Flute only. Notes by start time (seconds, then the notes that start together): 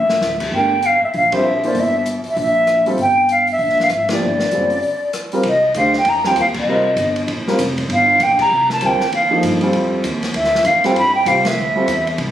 Already playing: E5
0.55 G5
0.86 F5
1.04 E5
1.16 F5
1.36 E5
1.67 D5
1.80 E5
2.30 E5
2.41 E5
3.02 G5
3.31 F5
3.52 E5
3.82 F5
3.94 E5
4.13 D5
5.49 D#5
5.77 F5
5.97 G5
6.09 A#5
6.27 G5
6.41 F5
6.59 D#5
7.93 F5
8.23 G5
8.41 A#5
8.73 A5
8.86 G5
9.15 F5
10.36 E5
10.67 F5
10.86 G5
10.98 B5
11.15 G5
11.28 F5
11.47 E5